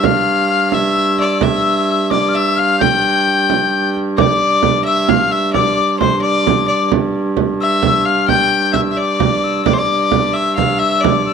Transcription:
Already playing: G2
0.04 F5 F6, frame drum
0.27 frame drum
0.49 F6
0.72 E5 E6, frame drum
0.95 E6, frame drum
1.18 D5, frame drum
1.41 E5 E6, frame drum
1.87 E6
2.10 D5 D6, frame drum
2.29 F6
2.34 E5 E6, frame drum
2.56 F5 F6, frame drum
2.79 G5 G6, frame drum
3.27 frame drum
3.50 frame drum
3.96 frame drum
4.17 G2 D5 D6, frame drum
4.40 frame drum
4.63 frame drum
4.85 E5 E6
5.08 F5 F6, frame drum
5.31 E5 E6, frame drum
5.53 D5 D6, frame drum
5.76 D6, frame drum
5.99 C5 C6, frame drum
6.21 D5 D6
6.47 frame drum
6.68 D5
6.92 frame drum
7.15 frame drum
7.37 frame drum
7.61 E5 E6
7.83 frame drum
8.05 F5 F6
8.28 G5 G6, frame drum
8.52 frame drum
8.73 E5 E6, frame drum
8.92 E5
8.97 D5 D6, frame drum
9.20 frame drum
9.44 E6, frame drum
9.65 G2 D5 D6, frame drum
9.74 C5
9.79 D5 D6
9.89 frame drum
10.12 frame drum
10.33 E5 E6
10.56 F5, frame drum
10.79 E5 E6
11.00 D5 D6, frame drum
11.26 E6, frame drum

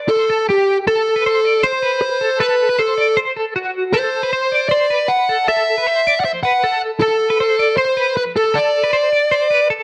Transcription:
Already playing: D5
0.09 A4 C5
0.30 A4
0.49 G4
0.87 A4
1.16 B4
1.26 C5
1.45 D5
1.63 C5
1.83 B4
2.02 C5
2.21 A4
2.40 A4 B4
2.69 B4
2.79 A4 C5
2.98 D5
3.17 C5
3.37 A4
3.56 F#4
3.93 A4 C5
4.23 B4
4.33 C5
4.52 D5
4.69 C5 D5
4.90 B4
5.08 F#5
5.29 A4
5.48 A4 E5
5.78 B4
5.87 C5
6.07 D5
6.20 F#5
6.25 C5 E5
6.43 B4 F#5
6.64 A4
7.00 A4
7.30 B4
7.40 C5
7.59 D5
7.77 C5
7.97 B4
8.17 B4
8.36 A4
8.54 A4 D5
8.84 B4
8.93 C5
9.12 D5
9.32 C5
9.50 B4
9.70 A4

